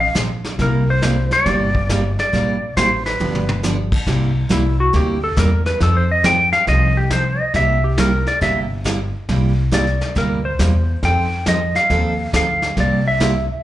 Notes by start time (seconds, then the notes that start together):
0.00 F5
0.15 A#1 F3 C4 D#4 A4, kick, snare, hi-hat pedal
0.44 snare
0.59 C2 C3 G3 A#3 E4 G4 A#4, brush sweep, kick, snare
0.90 C5
1.02 C3 G3 A#3 E4 G4, kick, snare, hi-hat pedal
1.31 D5, snare
1.46 G1 C3 G3 A#3 E4 G4, brush sweep, kick, snare
1.75 kick
1.89 C3 G3 A#3 E4 G4, kick, snare, hi-hat pedal
2.19 D5, snare
2.33 A#1 C3 G3 A#3 E4 G4, brush sweep, kick, snare
2.77 A1 C3 G3 A#3 E4 G4 C5, kick, snare, hi-hat pedal
3.06 B4, snare
3.20 G1 D3 F3 B3 D4 G4, mid tom
3.35 mid tom
3.49 mid tom
3.63 D3 F3 B3 D4 G4, snare, hi-hat pedal
3.92 kick, crash
4.06 C2 C3 G3 A#3 E4 G4, brush sweep, kick, snare
4.49 C2 C3 G3 A#3 E4 G4, kick, snare, hi-hat pedal
4.80 F#4
4.93 D2 C3 G3 A#3 E4 G4, brush sweep, kick, snare
5.24 A4
5.37 E2 C3 G3 A#3 E4 G4 A#4, kick, snare, hi-hat pedal
5.66 B4, snare
5.80 F2 F3 C4 D#4 A4, brush sweep, kick, snare
5.97 C5
6.12 D#5
6.24 F3 C4 D#4 A4 G5, kick, snare, hi-hat pedal
6.53 F5, snare
6.67 C2 F3 C4 D#4 A4 D#5, brush sweep, kick, snare
6.97 G4
7.10 F3 C4 D#4 A4 C5, kick, snare, hi-hat pedal
7.40 D#5
7.54 C2 C3 G3 A#3 E4 G4 E5, brush sweep, kick, snare
7.84 G4
7.98 C3 G3 A#3 E4 G4 A#4, kick, snare, hi-hat pedal
8.27 D5, snare
8.41 G1 C3 G3 A#3 E4 G4 E5, brush sweep, kick, snare
8.84 C3 G3 A#3 E4 G4, kick, snare, hi-hat pedal
9.29 C2 C3 G3 A#3 E4 G4, brush sweep, kick, snare
9.71 C3 G3 A#3 E4 G4 D5, kick, snare, hi-hat pedal
9.87 snare
10.01 snare
10.15 D2 C3 G3 A#3 E4 G4 A#4, brush sweep, kick, snare
10.45 C5
10.59 E2 C3 G3 A#3 E4 G4, kick, snare, hi-hat pedal
11.03 F2 F3 C4 D#4 A4 G5, brush sweep, kick, snare
11.46 F3 C4 D#4 A4 D#5, kick, snare, hi-hat pedal
11.75 F5, snare
11.90 D#2 F3 C4 D#4 A4, brush sweep, kick, snare
12.33 D2 F3 C4 D#4 A4 F5, kick, snare, hi-hat pedal
12.62 snare
12.77 C2 C3 G3 A#3 E4 G4 D5, brush sweep, kick, snare
13.08 E5
13.20 C3 G3 A#3 E4 G4, kick, snare, hi-hat pedal